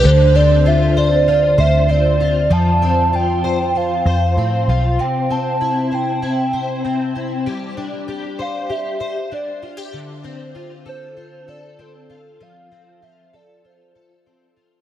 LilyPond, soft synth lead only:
\new Staff \with { instrumentName = "Soft synth lead" } { \time 4/4 \key d \dorian \tempo 4 = 97 c''8 d''8 e''8 d''4 e''8 d''4 | a''4 g''4 f''4. f''8 | g''8 a''4 g''2 r8 | r4. f''8 e''4 d''8. r16 |
r4. c''4 d''8 a'4 | f''4 e''8 d''8 c''4. r8 | }